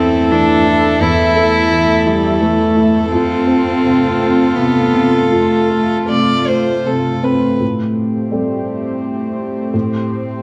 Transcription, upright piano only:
0.00 0.97 E2 medium
0.00 0.17 E3 medium
0.00 0.65 E4 soft
0.31 0.87 E3 medium
0.65 1.22 E4 medium
1.01 3.08 E2 medium
1.36 1.92 A3 medium
1.71 2.27 E3 soft
2.06 2.62 E4 soft
2.41 2.97 E3 medium
2.77 3.12 E4 medium
3.12 5.29 F2 medium
3.47 4.05 C4 soft
3.83 4.41 C3 soft
4.19 4.79 C4 soft
4.56 4.92 C3 soft
4.93 5.56 C3 soft
5.32 7.57 F2 medium
5.70 6.32 A3 soft
6.10 6.71 C3 soft
6.47 7.08 C4 soft
6.85 7.46 C3 soft
7.23 7.61 C4 soft
7.61 8.30 A2 soft
8.32 9.70 G3 soft
8.32 9.70 C4 soft
8.32 9.70 A4 soft
9.74 10.41 A2 soft

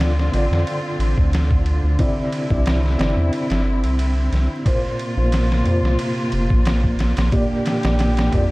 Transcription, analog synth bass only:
0.00 0.30 D2 medium
0.33 0.49 A1 medium
0.51 0.65 F2 medium
0.99 1.15 A1 medium
1.18 1.81 D2 loud
1.83 1.97 D2 medium
2.51 2.96 C2 loud
2.99 3.15 G1 medium
3.17 3.31 E2 medium
3.50 3.85 G1 medium
3.83 4.30 C2 medium
4.32 4.48 C2 medium
5.17 5.63 A#1 loud
5.66 5.82 F2 medium
5.83 5.97 C2 medium
6.32 6.48 F1 medium
6.51 7.14 A#1 loud
7.17 7.31 A#1 medium
7.84 8.30 A#1 loud
8.33 8.49 F2 medium

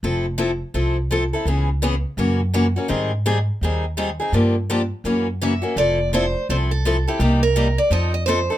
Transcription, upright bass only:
0.03 0.61 F1 medium
0.74 1.32 C2 medium
1.45 2.03 C#2 medium
2.17 2.75 F#2 medium
2.90 3.48 G#2 medium
3.61 4.19 D#2 medium
4.32 4.90 G2 medium
5.04 5.62 F#2 medium
5.76 6.33 F1 medium
6.49 7.06 C2 medium
7.19 7.76 C2 medium
7.90 8.47 F2 medium

